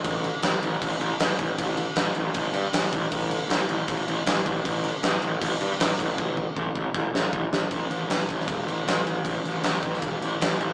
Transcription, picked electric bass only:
\new Staff \with { instrumentName = "Picked electric bass" } { \clef bass \time 4/4 \key c \major \tempo 4 = 157 a,,4 a,,8 a,,8 a,,8 a,,8 a,,8 a,,8 | a,,4 a,,8 a,,8 a,,8 g,8 a,,8 a,,8 | a,,4 a,,8 a,,8 a,,8 a,,8 a,,8 a,,8 | a,,4 a,,8 a,,8 a,,8 g,8 a,,8 a,,8 |
a,,4 a,,8 a,,8 a,,8 a,,8 a,,8 a,,8 | a,,8 a,,8 a,,8 a,,8 e,,8 a,,8 a,,8 a,,8 | a,,8 a,,8 a,,8 a,,8 e,,8 a,,8 a,,8 a,,8 | }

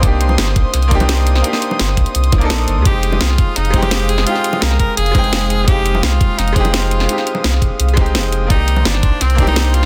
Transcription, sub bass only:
\new Staff \with { instrumentName = "Sub bass" } { \clef bass \time 4/4 \key f \dorian \tempo 4 = 170 c,4 g,,8 c,16 r16 c,2 | r4 g,,8 c,16 r16 c,8 c,8 bes,,8 g,,16 ees,16 | f,,4 c,8 f,,16 r16 f,,2 | r4 c,8 f,,16 r16 f,,8 f,,4. |
f,,4 c,8 f,,16 r16 f,,2 | r4 c,8 f,,16 r16 c,4 f,,4 | c,4 g,,8 c,16 r16 c,2 | }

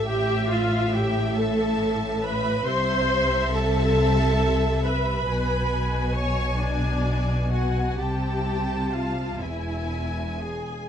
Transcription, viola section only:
\new Staff \with { instrumentName = "Viola section" } { \time 6/8 \key a \minor \tempo 4. = 45 g'8 f'8 g'8 a'4 b'8 | c''4 a'4. b'8~ | b'4 cis''8 d'4 fis'8 | g'4 f'8 e'4 gis'8 | }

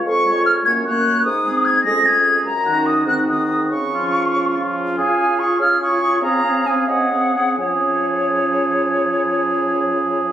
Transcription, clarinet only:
\new Staff \with { instrumentName = "Clarinet" } { \time 6/8 \key des \major \tempo 4. = 94 r8 f'4 des'8 des'4 | r8 c'4 des'8 des'4 | r8 des'4 c'8 c'4 | r8 des'4. des'4 |
f''4. des''4. | f''4. ees''8. r8. | des'2.~ | des'2. | }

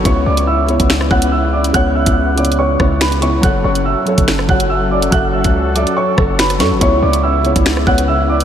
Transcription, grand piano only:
\new Staff \with { instrumentName = "Grand piano" } { \time 4/4 \key fis \minor \tempo 4 = 142 <cis'' cis'''>8 <d'' d'''>8 <e'' e'''>4. <fis'' fis'''>8 <e'' e'''>8 <d'' d'''>8 | <fis'' fis'''>8 <e'' e'''>4 <d'' d'''>8 <cis'' cis'''>4 <b' b''>8 <cis'' cis'''>8 | <fis'' fis'''>8 <cis'' cis'''>8 <e'' e'''>4. <fis'' fis'''>8 <e'' e'''>8 <d'' d'''>8 | <fis'' fis'''>8 <e'' e'''>4 <d'' d'''>8 <cis'' cis'''>4 <b' b''>8 <cis'' cis'''>8 |
<cis'' cis'''>8 <d'' d'''>8 <e'' e'''>4. <fis'' fis'''>8 <e'' e'''>8 <d'' d'''>8 | }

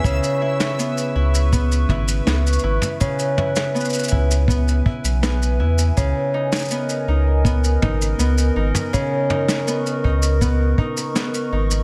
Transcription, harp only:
\new Staff \with { instrumentName = "Harp" } { \time 4/4 \key cis \dorian \tempo 4 = 81 cis8 e'8 b8 e'8 b8 e'8 b8 e'8 | cis8 e'8 b8 e'8 b8 e'8 b8 e'8 | cis8 dis'8 b8 dis'8 b8 dis'8 b8 dis'8 | cis8 dis'8 b8 dis'8 b8 dis'8 b8 dis'8 | }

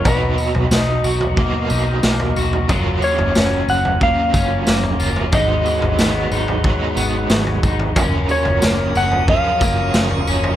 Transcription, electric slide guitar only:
\new Staff \with { instrumentName = "Electric slide guitar" } { \time 4/4 \key fis \major \tempo 4 = 91 b'4 r2. | r8 cis''4 fis''8 eis''2 | dis''2. r4 | r8 cis''4 fis''8 eis''2 | }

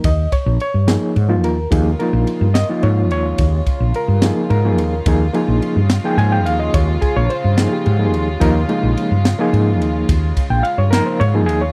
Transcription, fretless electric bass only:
\new Staff \with { instrumentName = "Fretless electric bass" } { \clef bass \time 6/8 \key ees \mixolydian \tempo 4. = 72 ees,8 r16 bes,,16 r16 g,8 r16 aes,8 ees,8 | ees,8 r16 bes,,16 r16 g,8 r16 aes,8 ees,8 | ees,8 r16 bes,,16 r16 g,8 r16 aes,8 ees,8 | ees,8 r16 bes,,16 r16 g,8 r16 aes,8 ees,8 |
ees,8 r16 bes,,16 r16 g,8 r16 aes,8 ees,8 | ees,8 r16 bes,,16 r16 g,8 r16 aes,8 ees,8 | ees,8 r16 bes,,16 r16 g,8 r16 aes,8 ees,8 | }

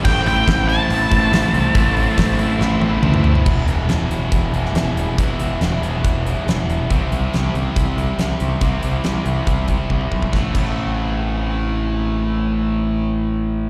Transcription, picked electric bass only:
\new Staff \with { instrumentName = "Picked electric bass" } { \clef bass \time 4/4 \key a \minor \tempo 4 = 140 a,,8 a,,8 a,,4 a,,8 a,,8 a,,8 c,8 | a,,4 a,,8 a,,8 a,,8 a,,8 d,4 | e,,8 e,,8 e,,8 e,,8 e,,8 e,,8 e,,8 e,,8 | e,,8 e,,8 e,,8 e,,8 e,,4 e,,8 e,,8 |
c,8 c,8 c,8 c,8 c,8 c,8 c,8 c,8 | c,8 c,8 c,8 c,8 c,4 c,8 b,,8 | a,,8 a,,2.~ a,,8~ | a,,1 | }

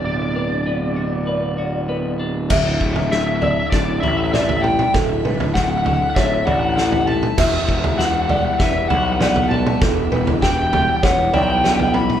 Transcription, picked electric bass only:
\new Staff \with { instrumentName = "Picked electric bass" } { \clef bass \time 4/4 \key d \major \tempo 4 = 98 d,,1 | d,,8 d,,4. d,,8 a,,4. | d,,8 d,,4. d,,8 a,,4. | e,,8 e,,4. e,,8 b,,4. |
e,,8 e,,4. e,,8 b,,4. | }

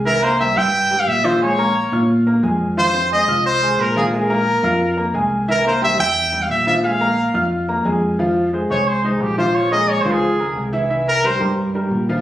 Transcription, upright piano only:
\new Staff \with { instrumentName = "Upright piano" } { \time 4/4 \key bes \dorian \tempo 4 = 177 <e e' e''>8 <bes bes' bes''>8 <g g' g''>8 <e' e'' e'''>4 <g g' g''>4 <f f' f''>8 | <aes aes' aes''>8 <bes bes' bes''>4 <f' f'' f'''>4 <bes bes' bes''>8 <aes aes' aes''>4 | <f f' f''>8 <c' c'' c'''>8 <aes aes' aes''>8 <f' f'' f'''>4 <aes aes' aes''>4 <f f' f''>8 | <aes aes' aes''>8 <bes bes' bes''>4 <f' f'' f'''>4 <bes bes' bes''>8 <aes aes' aes''>4 |
<e e' e''>8 <bes bes' bes''>8 <g g' g''>8 <e' e'' e'''>4 <g g' g''>4 <f f' f''>8 | <aes aes' aes''>8 <bes bes' bes''>4 <f' f'' f'''>4 <bes bes' bes''>8 <aes aes' aes''>4 | <f f' f''>4 <aes aes' c''>8 <aes aes' c''>4 <aes aes' c''>4 <f f' f''>8~ | <f f' f''>8 <aes aes' bes'>4 <f f' f''>4 <aes aes' bes'>4 <e e' e''>8 |
<e e' e''>4 <g g' bes'>8 <g g' bes'>4 <g g' bes'>4 <f f' f''>8 | }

